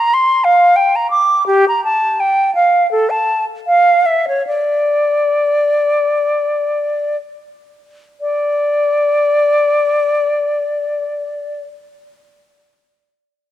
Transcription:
Already playing: A#5
0.13 C6
0.44 F5
0.76 G5
0.95 A#5
1.10 D6
1.46 G4
1.68 A#5
1.84 A5
2.20 G5
2.55 F5
2.91 A4
3.09 A5
3.66 F5
4.05 E5
4.28 C#5
4.46 D5
8.20 D5

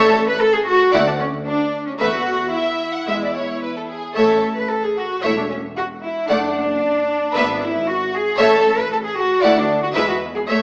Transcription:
Already playing: A1 A3 A4 C#5 E5
0.28 B4
0.41 A4
0.55 G#4
0.67 F#4
0.92 D2 A3 E4 D5 F#5
1.07 D4
1.20 C#4
1.46 D4
1.87 C#4
1.99 E2 A3 F#4 B4 E5
2.53 E4 E5
2.94 F#5
3.07 E2 G#3 E5
3.23 D5
3.35 C#5
3.62 B4
3.76 A4
3.90 G#4
4.15 A1 A3 A4 C#5 E5
4.57 B4
4.70 A4
4.84 G#4
4.97 F#4
5.22 E1 A3 E4 C#5 E5
5.36 D4
5.50 C#4
5.77 F#4
6.03 E4
6.28 F#1 A3 D4 D5 F#5
7.34 G#1 B3 B4 E5
7.62 E4
7.88 F#4
8.14 G#4
8.38 A1 A3 A4 C#5 E5
8.78 B4
8.91 A4
9.04 G#4
9.17 F#4
9.41 D2 A3 E4 D5 F#5
9.56 D4
9.82 F#4
9.94 E2 G#3 E4 B4 E5
10.08 F#4
10.36 G#4
10.48 A1 A3 A4 C#5 E5

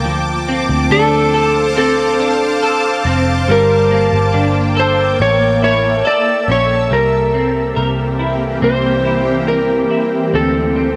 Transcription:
Already playing: A#3 D4 A4 D6
0.04 D2 F3 C5 F5 A5
0.48 C4
0.69 D2
0.90 D2 D4 A4
0.99 A5
1.34 A4
1.77 C4 A4
2.20 D4
2.63 A4
3.05 F1 C4
3.47 G1 G3 A#3 G5
3.51 A#4
3.91 A#3
4.13 G1
4.34 G1 D4
4.77 A4 C5
5.20 A1 A4 C#5 E5 E6
5.62 E4 C#5
6.05 A4 D5
6.48 A#1 C#4 C#5
6.91 C2 E3 G3 A#3 C4 G4 A#4
7.34 C4
7.76 C2 A#4
8.19 E4
8.62 C2 C4 C5
9.05 E4
9.47 C4 A#4
9.90 E4
10.34 D2 D3 F3 A3 C4 F4 A4
10.76 C4

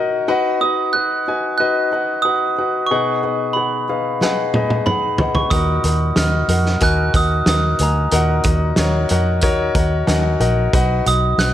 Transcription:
Already playing: D#4 F#4 A#4 C#5 D#5 F#5 G#5
0.28 D#4 F#4 B4 F#5
0.61 D#4 F#4 B4 D#5 D#6
0.93 D#4 F#4 B4 D#5 F#6
1.28 D#4 F#4 B4 G#5
1.58 D#4 F#4 B4 D#5 F#6
1.92 D#4 F#4 B4 F#5
2.22 D#4 F#4 B4 F#5 D#6
2.58 D#4 F#4 B4 F#5
2.87 C#6
2.91 B2 D#4 G#4 B4 F#5
3.23 D#4 G#4 B4 F#5
3.53 D#4 G#4 B4 F#5 B5
3.89 D#4 G#4 B4 F5
4.21 D#4 G#4 B4 F#5, snare
4.54 D#4 G#4 B4 D#5, high tom
4.70 high tom
4.86 D#4 G#4 B4 F#5 B5, mid tom
5.18 D#4 G#4 B4 F#5, floor tom
5.35 C#6, floor tom
5.50 D#2 A#2 D#4 F#4 A#4 F#5 D#6, kick, closed hi-hat
5.84 D#2 D#4 F#4 A#4 F#5, closed hi-hat
6.16 D#2 D#4 F#4 A#4 D#5 F6, snare, closed hi-hat
6.48 F2 D#4 F#4 A#4 F#5, closed hi-hat
6.66 snare
6.80 D#2 D#4 F#4 A#4 G#5 F#6, kick, closed hi-hat
7.14 D#2 D#4 F#4 A#4 F#5 D#6, kick, closed hi-hat
7.46 D#2 D#4 F#4 A#4 F#5 D#6, snare, closed hi-hat
7.79 D2 D#4 F#4 A#4 G#5, closed hi-hat
7.83 A#5
8.11 D#2 A#2 D#4 F#4 A#4 F#5, closed hi-hat
8.43 D#2 D#4 F#4 A#4 D#5, kick, closed hi-hat
8.76 D#2 D#4 F#4 A#4 C#5, snare, closed hi-hat
9.09 F2 D#4 F#4 A#4 F#5, closed hi-hat
9.41 D#2 D#4 F#4 A#4 C#5, kick, closed hi-hat
9.75 D#2 D#4 F#4 A#4 F#5 A#5, kick, closed hi-hat
10.07 D#2 D#4 F#4 A#4 F#5 G#5, snare, closed hi-hat
10.23 F#5
10.40 A#1 D#4 F#4 A#4 D#5 F#5, closed hi-hat
10.73 B1 D#4 F#4 B4 F#5, kick, closed hi-hat
11.06 B1 D#4 F#4 B4 F#5 D#6, closed hi-hat
11.38 B1 D#4 F#4 B4 F#5 F#6, snare, closed hi-hat

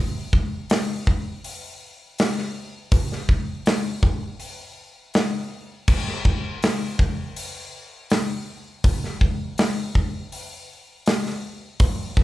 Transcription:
0.33 kick
0.70 snare, open hi-hat
1.07 kick
1.44 open hi-hat
2.18 snare, open hi-hat
2.38 snare
2.92 kick, open hi-hat
3.12 snare
3.29 kick
3.66 snare, open hi-hat
4.03 kick
4.40 open hi-hat
5.14 snare, open hi-hat
5.88 kick, crash
6.08 snare
6.25 kick
6.62 snare, open hi-hat
6.99 kick
7.36 open hi-hat
8.10 snare, open hi-hat
8.84 kick, open hi-hat
9.04 snare
9.21 kick
9.58 snare, open hi-hat
9.95 kick
10.32 open hi-hat
11.06 snare, open hi-hat
11.26 snare
11.80 kick, open hi-hat
12.17 kick

